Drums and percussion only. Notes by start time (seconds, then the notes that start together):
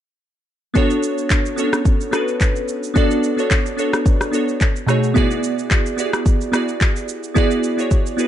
0.75 kick, shaker
0.90 shaker
1.03 shaker
1.18 shaker
1.30 kick, clap, shaker
1.46 shaker
1.58 shaker
1.73 cross-stick, shaker
1.85 kick, shaker
2.01 shaker
2.13 cross-stick, shaker
2.28 shaker
2.41 kick, clap, shaker
2.56 shaker
2.68 shaker
2.83 shaker
2.96 kick, shaker
3.11 shaker
3.23 shaker
3.39 shaker
3.51 kick, clap, shaker
3.66 shaker
3.79 shaker
3.93 cross-stick, shaker
4.06 kick, shaker
4.21 cross-stick, shaker
4.34 shaker
4.49 shaker
4.61 kick, clap, shaker
4.76 shaker
4.88 cross-stick, shaker
5.04 shaker
5.16 kick, shaker
5.31 shaker
5.43 shaker
5.59 shaker
5.71 kick, clap, shaker
5.86 shaker
5.98 shaker
6.13 cross-stick, shaker
6.26 kick, shaker
6.41 shaker
6.53 cross-stick, shaker
6.68 shaker
6.81 kick, clap, shaker
6.96 shaker
7.09 shaker
7.24 shaker
7.36 kick, shaker
7.51 shaker
7.64 shaker
7.79 shaker
7.91 kick, shaker
8.06 shaker
8.19 shaker